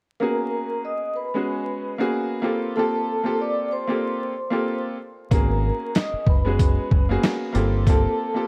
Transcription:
0.20 1.24 A#3 medium
0.20 1.24 B3 medium
0.20 1.25 C#4 medium
0.20 1.25 F#4 medium
0.20 1.25 G#4 loud
0.20 0.80 A#4 loud
0.20 0.81 A#5 medium
0.85 1.13 D#5 medium
0.85 1.14 D#6 medium
1.15 2.08 B4 medium
1.15 2.08 B5 medium
1.34 1.92 G#3 medium
1.34 1.93 B3 medium
1.34 1.93 C#4 medium
1.34 1.93 F#4 medium
1.34 1.93 G#4 medium
1.98 2.40 A#3 medium
1.98 2.45 B3 medium
1.98 2.45 C#4 medium
1.98 2.45 F#4 medium
1.98 2.46 G#4 loud
2.42 2.73 A#3 loud
2.42 2.73 C4 medium
2.42 2.73 F4 medium
2.42 2.74 G4 medium
2.42 2.74 A4 loud
2.76 3.22 A#3 medium
2.76 3.22 C4 medium
2.76 3.22 F4 medium
2.76 3.23 G4 medium
2.76 3.36 A4 loud
2.76 3.23 A4 loud
2.76 3.36 A5 medium
3.24 3.83 A#3 medium
3.24 3.83 C4 medium
3.24 3.83 F4 medium
3.24 3.84 G4 medium
3.24 3.84 A4 loud
3.41 3.69 D5 medium
3.41 3.70 D6 medium
3.72 4.81 C5 medium
3.72 4.82 C6 medium
3.87 4.31 A#3 medium
3.87 4.32 C4 medium
3.87 4.32 F4 medium
3.87 4.32 G4 medium
3.87 4.33 A4 medium
4.50 4.95 A#3 medium
4.50 4.95 C4 medium
4.50 4.95 F4 medium
4.50 4.96 G4 medium
4.50 4.96 A4 loud
5.31 5.70 G#1 loud
5.31 6.35 A#3 medium
5.31 6.35 B3 medium
5.31 6.35 C#4 medium
5.31 6.36 F#4 medium
5.31 6.36 G#4 loud
5.31 5.91 A#4 loud
5.31 5.92 A#5 medium
5.31 kick loud
5.31 closed hi-hat medium
5.95 6.24 D#5 medium
5.95 6.25 D#6 medium
5.95 snare loud
5.95 snare medium
5.95 closed hi-hat medium
6.13 muted fingered electric bass stroke medium
6.27 6.77 F#1 medium
6.27 7.19 B4 medium
6.27 7.20 B5 medium
6.27 kick medium
6.45 7.03 G#3 medium
6.45 7.03 B3 medium
6.45 7.04 C#4 medium
6.45 7.04 F#4 medium
6.45 7.04 G#4 medium
6.59 kick medium
6.59 closed hi-hat medium
6.91 7.16 F#1 medium
6.91 kick medium
7.09 7.51 A#3 medium
7.09 7.55 B3 medium
7.09 7.56 C#4 medium
7.09 7.56 F#4 medium
7.09 7.56 G#4 loud
7.23 snare loud
7.23 snare medium
7.23 closed hi-hat medium
7.53 8.05 G1 medium
7.53 7.83 A#3 medium
7.53 7.84 C4 medium
7.53 7.84 F4 medium
7.53 7.84 G4 medium
7.53 7.85 A4 medium
7.53 closed hi-hat medium
7.86 8.32 A#3 medium
7.86 8.33 C4 medium
7.86 8.33 F4 medium
7.86 8.33 G4 medium
7.86 8.47 A4 loud
7.86 8.34 A4 loud
7.86 8.47 A5 medium
7.86 kick loud
7.86 closed hi-hat medium
8.34 8.47 A#3 medium
8.34 8.47 C4 medium
8.34 8.47 F4 medium
8.34 8.47 G4 medium
8.34 8.47 A4 loud

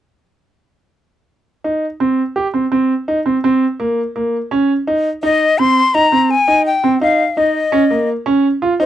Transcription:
1.64 1.84 D#4 medium
2.00 2.20 C4 medium
2.36 2.46 G4 medium
2.54 2.64 C4 medium
2.72 2.92 C4 medium
3.08 3.18 D#4 medium
3.26 3.36 C4 medium
3.44 3.64 C4 medium
3.80 4.00 A#3 medium
4.16 4.36 A#3 medium
4.51 4.71 C#4 medium
4.87 5.07 D#4 medium
5.23 5.43 D#4 medium
5.23 5.60 D#5 medium
5.58 5.79 C4 medium
5.58 5.96 C6 medium
5.94 6.04 D#4 medium
5.94 6.32 A#5 medium
6.12 6.32 C4 medium
6.31 6.65 G#5 medium
6.48 6.68 D#4 medium
6.66 6.99 G5 medium
6.84 6.94 C4 medium
7.01 7.21 D#4 medium
7.01 7.39 F5 medium
7.37 7.57 D#4 medium
7.37 8.09 D#5 medium
7.72 7.82 C#4 medium
7.91 8.10 A#3 medium
8.26 8.46 C#4 medium
8.62 8.72 F4 medium
8.80 8.86 D#4 medium
8.80 8.86 C5 medium

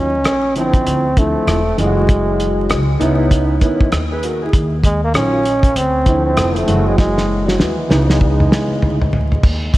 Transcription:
0.00 0.25 D#2 loud
0.00 0.52 C#4 loud
0.00 0.10 F4 medium
0.24 0.83 A#1 medium
0.24 cross-stick loud
0.24 closed hi-hat medium
0.55 1.01 D3 medium
0.55 1.01 F3 medium
0.55 1.02 C4 medium
0.55 1.20 C4 medium
0.55 1.02 E4 medium
0.55 closed hi-hat medium
0.74 kick medium
0.74 closed hi-hat soft
0.86 1.33 D2 medium
0.86 closed hi-hat medium
1.16 1.55 D3 medium
1.16 1.55 F3 medium
1.16 1.79 A3 loud
1.16 1.56 C4 medium
1.16 1.56 E4 medium
1.16 kick medium
1.16 closed hi-hat medium
1.36 muted upright bass stroke soft
1.47 1.76 E1 loud
1.47 cross-stick medium
1.47 closed hi-hat medium
1.77 2.71 F#1 medium
1.77 2.82 E3 medium
1.77 2.83 F#3 medium
1.77 2.83 G#3 medium
1.77 2.97 G#3 medium
1.77 1.87 F4 medium
1.77 closed hi-hat medium
1.86 2.87 F#4 medium
2.09 kick loud
2.09 closed hi-hat medium
2.40 closed hi-hat medium
2.70 2.99 C#2 medium
2.70 cross-stick loud
2.70 closed hi-hat medium
2.99 3.58 C#2 medium
2.99 3.54 B3 medium
2.99 3.54 C#4 medium
2.99 3.54 D#4 medium
2.99 3.55 E4 medium
2.99 closed hi-hat medium
3.31 kick medium
3.31 closed hi-hat medium
3.61 3.85 D#3 medium
3.61 3.85 B3 medium
3.61 3.86 C#4 medium
3.61 3.86 E4 medium
3.61 kick medium
3.61 closed hi-hat medium
3.81 kick medium
3.92 4.50 D#2 medium
3.92 cross-stick medium
3.92 closed hi-hat medium
4.12 4.23 G#4 medium
4.12 4.23 B4 medium
4.23 4.41 F#4 medium
4.23 4.41 A#4 medium
4.23 closed hi-hat medium
4.42 4.71 E4 soft
4.42 4.71 G#4 medium
4.53 5.12 D#2 loud
4.53 kick loud
4.53 closed hi-hat medium
4.83 5.02 G#3 medium
4.83 kick medium
4.83 closed hi-hat medium
5.04 5.14 A#3 loud
5.14 5.73 A#1 medium
5.14 5.38 D#3 medium
5.14 5.38 F#3 medium
5.14 5.39 C#4 medium
5.14 5.78 C#4 medium
5.14 5.39 F4 medium
5.14 cross-stick loud
5.14 closed hi-hat medium
5.45 closed hi-hat medium
5.63 kick medium
5.63 closed hi-hat soft
5.76 6.38 D2 medium
5.76 6.25 C4 loud
5.76 closed hi-hat loud
6.05 6.67 D3 medium
6.05 6.14 E3 soft
6.05 6.68 C4 medium
6.05 6.68 E4 medium
6.05 kick medium
6.05 closed hi-hat medium
6.12 6.71 F3 medium
6.26 6.58 C4 medium
6.37 6.66 F1 loud
6.37 cross-stick loud
6.37 closed hi-hat medium
6.56 6.89 A3 medium
6.56 closed hi-hat soft
6.66 7.56 F#1 loud
6.66 7.72 E3 medium
6.66 7.73 F#3 medium
6.66 7.72 G#3 medium
6.66 7.73 F#4 medium
6.66 closed hi-hat medium
6.88 6.98 G#3 medium
6.98 7.50 G#3 medium
6.98 kick loud
6.98 snare medium
7.18 snare soft
7.48 7.62 F#3 medium
7.48 snare medium
7.59 7.89 D#2 medium
7.59 8.11 E3 medium
7.59 snare medium
7.89 8.48 C#2 medium
7.89 8.94 C#3 medium
7.89 8.95 E3 medium
7.89 8.95 B3 medium
7.89 8.96 D#4 medium
7.89 snare medium
8.10 8.21 G#3 medium
8.10 snare medium
8.21 9.09 G#3 medium
8.21 kick medium
8.40 mid tom medium
8.52 snare medium
8.70 muted upright bass stroke soft
8.82 9.40 D2 medium
8.82 floor tom medium
9.02 floor tom medium
9.13 floor tom medium
9.32 floor tom medium
9.43 9.78 D#2 loud
9.43 kick loud
9.43 crash loud
9.74 kick medium
9.74 closed hi-hat medium

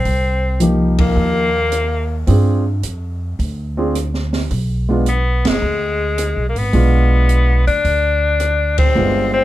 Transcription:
0.00 0.63 C4 medium
0.05 1.13 C2 medium
0.05 kick soft
0.05 open hi-hat soft
0.60 1.47 F3 medium
0.60 1.47 A#3 medium
0.60 1.48 D#4 medium
0.60 1.48 G4 medium
0.60 closed hi-hat medium
0.98 2.24 A#3 loud
0.98 kick medium
0.98 ride medium
1.16 2.24 D#2 medium
1.72 cross-stick medium
1.72 closed hi-hat medium
2.27 2.80 G2 medium
2.27 2.62 C4 medium
2.27 2.62 D4 medium
2.27 2.63 F4 medium
2.27 2.63 G#4 medium
2.27 kick soft
2.27 open hi-hat soft
2.83 3.35 F2 medium
2.83 closed hi-hat medium
3.39 4.46 D2 medium
3.39 kick soft
3.39 open hi-hat soft
3.77 3.93 C4 medium
3.77 3.93 D4 medium
3.77 3.94 F4 medium
3.77 3.94 G#4 medium
3.95 cross-stick medium
3.95 closed hi-hat medium
4.14 snare soft
4.33 snare soft
4.33 open hi-hat soft
4.51 5.41 B1 medium
4.51 kick soft
4.51 open hi-hat soft
4.89 5.04 G#3 medium
4.89 5.05 B3 medium
4.89 5.05 D4 medium
4.89 5.05 F4 medium
5.06 5.49 B3 medium
5.06 closed hi-hat medium
5.45 5.61 F#1 medium
5.45 6.48 G#3 medium
5.45 snare medium
5.45 ride medium
5.62 6.32 D2 medium
6.18 cross-stick medium
6.18 closed hi-hat medium
6.36 6.54 B1 medium
6.49 6.59 A#3 medium
6.55 6.72 G#1 medium
6.55 7.66 B3 loud
6.55 open hi-hat soft
6.73 7.63 B1 medium
6.73 7.60 G#3 medium
6.73 7.60 B3 medium
6.73 7.60 D4 medium
6.73 7.60 F4 medium
6.73 kick soft
6.73 open hi-hat soft
7.29 closed hi-hat soft
7.67 7.83 D2 medium
7.67 8.75 D4 loud
7.67 open hi-hat soft
7.85 8.92 D2 medium
7.85 kick soft
7.85 open hi-hat soft
8.40 cross-stick medium
8.40 closed hi-hat medium
8.78 9.30 C4 medium
8.78 kick medium
8.78 ride medium
8.95 9.44 G1 medium
8.95 9.44 G#3 medium
8.95 9.44 B3 medium
8.95 9.44 D4 medium
8.95 9.44 F4 medium
9.33 9.44 C4 loud

